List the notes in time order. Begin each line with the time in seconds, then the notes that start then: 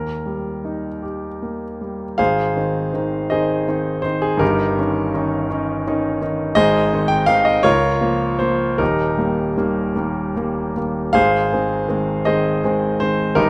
Already playing: D#2 A#4
0.26 G3
0.65 D#4
1.02 G4
1.42 A#3
1.81 G3
2.18 G#1 G#2 G#4 C5 F5
2.56 D#3 C4 D#4
2.93 D#3 C4 D#4
3.30 D#3 C4 D#4 G#4 C5 D#5
3.68 D#3 C4 D#4
4.02 D#3 C4 D#4 C5
4.22 G#4
4.37 G1 G2 D#4 G4 A#4
4.78 D#3 C#4 D#4
5.14 D#3 C#4 D#4
5.50 D#3 C#4 D#4
5.87 D#3 C#4 D#4
6.21 D#3 C#4 D#4
6.55 G#1 G#2 G#4 C5 D#5
6.93 D#3 C4 D#4
7.08 G5
7.26 D#3 C4 D#4 F5
7.45 D#5
7.63 C#2 F4 A#4 C#5
8.01 F3 A#3
8.39 F3 A#3 C5
8.78 D#1 D#2 D#4 G4 A#4
9.18 D#3 G3 A#3
9.57 D#3 G3 A#3
9.95 D#3 G3 A#3
10.36 D#3 G3 A#3
10.76 D#3 G3 A#3
11.13 G#1 G#2 G#4 C5 F5
11.52 D#3 G#3 C4
11.88 D#3 G#3 C4
12.25 D#3 G#3 C4 G#4 C5 D#5
12.64 D#3 G#3 C4
13.00 D#3 G#3 C4 C5
13.35 G1 G2 D#4 G4 A#4